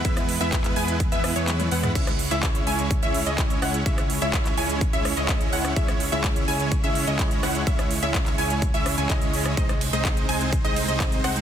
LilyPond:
<<
  \new Staff \with { instrumentName = "Synth pluck" } { \time 4/4 \key cis \minor \tempo 4 = 126 e''16 r8 e''8. gis''8 r16 e''8 cis''8. fis''8 | e''16 r8 e''8. gis''8 r16 e''8 dis''8. fis''8 | e''16 r8 e''8. gis''8 r16 e''8 dis''8. fis''8 | e''16 r8 e''8. gis''8 r16 e''8 dis''8. fis''8 |
e''16 r8 e''8. gis''8 r16 e''8 gis''16 dis''4 | dis''16 r8 dis''8. gis''8 r16 dis''8 dis''8. fis''8 | }
  \new Staff \with { instrumentName = "Supersaw synth" } { \time 4/4 \key cis \minor <gis b e' b' e''>16 r8 <gis b e' b' e''>8. <gis b e' b' gis''>8 r16 <gis b e' b' e''>8 <gis b e' b' cis''>8. <gis b e' b' fis''>8 | <gis cis' e' cis''>16 r8 <gis cis' e' cis'' e''>8. <gis cis' e' cis'' gis''>8 r16 <gis cis' e' cis'' e''>8 <gis cis' e' cis'' dis''>8. <gis cis' e' cis'' fis''>8 | <gis cis' e' cis'' e''>16 r8 <gis cis' e' cis'' e''>8. <gis cis' e' cis'' gis''>8 r16 <gis cis' e' cis'' e''>8 <gis cis' e' cis'' dis''>8. <gis cis' e' cis'' fis''>8 | <gis cis' e' cis'' e''>16 r8 <gis cis' e' cis'' e''>8. <gis cis' e' cis'' gis''>8 r16 <gis cis' e' cis'' e''>8 <gis cis' e' cis'' dis''>8. <gis cis' e' cis'' fis''>8 |
<cis' cis''>16 r8 <gis cis' e' cis'' e''>8. <gis cis' e' cis'' gis''>8 r16 <gis cis' e' cis'' e''>8 <gis cis' e' cis'' gis''>16 <gis cis' e' cis''>4 | <gis bis dis' bis' dis''>16 r8 <gis bis dis' bis' dis''>8. <gis bis dis' bis' gis''>8 r16 <gis bis dis' bis' dis''>8 <gis bis dis' bis' dis''>8. <gis bis dis' bis' fis''>8 | }
  \new Staff \with { instrumentName = "Supersaw synth" } { \time 4/4 \key cis \minor << { <b e' b'>1 | <cis' e' cis''>1~ | <cis' e' cis''>1~ | <cis' e' cis''>1~ |
<cis' e' cis''>1 | <bis dis' bis'>1 | } \\ { gis1 | gis1~ | gis1~ | gis1~ |
gis1~ | gis1 | } >> }
  \new Staff \with { instrumentName = "Analog synth bass" } { \clef bass \time 4/4 \key cis \minor e,8. e,8. e,8. e,8 e,8. e,8 | cis,8. cis,8. cis,8. cis,8 cis,8. cis,8 | cis,8. cis,8. cis,8. cis,8 cis,8. cis,8 | cis,8. cis,8. cis,8. cis,8 cis,8. cis,8 |
cis,8. cis,8. cis,8. cis,8 cis,16 cis,4 | bis,,8. bis,,8. bis,,8. bis,,8 bis,,8. bis,,8 | }
  \new DrumStaff \with { instrumentName = "Drums" } \drummode { \time 4/4 <hh bd>16 <hh ss>16 hho16 hh16 <hc hh bd>16 <hc hh>16 hho16 hh16 <hh bd>16 hh16 <hho ss>16 hh16 <hc hh tommh>16 <hh tommh>16 hho16 <hh ss toml>16 | <cymc hh bd>16 <hh ss>16 hho16 hh16 <hc hh bd>16 hh16 hho16 hh16 <hh bd>16 hh16 hho16 hh16 <hc hh bd>16 hh16 <hho ss>16 hh16 | <hh bd>16 <hh ss>16 hho16 hh16 <hc hh bd>16 <hc hh>16 hho16 hh16 <hh bd>16 hh16 <hho ss>16 hh16 <hc hh bd>16 hh16 hho16 <hh ss>16 | <hh bd>16 <hh ss>16 hho16 hh16 <hc hh bd>16 hh16 hho16 hh16 <hh bd>16 hh16 hho16 hh16 <hc hh bd>16 hh16 <hho ss>16 hh16 |
<hh bd>16 <hh ss>16 hho16 hh16 <hc hh bd>16 <hc hh>16 hho16 hh16 <hh bd>16 hh16 <hho ss>16 hh16 <hc hh bd>16 hh16 hho16 <hh ss>16 | <hh bd>16 <hh ss>16 <hho cymr>16 hh16 <hc hh bd>16 hh16 <hho cymr>16 hh16 <hh bd>16 hh16 <hho cymr>16 hh16 <hc hh bd>16 hh16 <hho cymr ss>16 hh16 | }
>>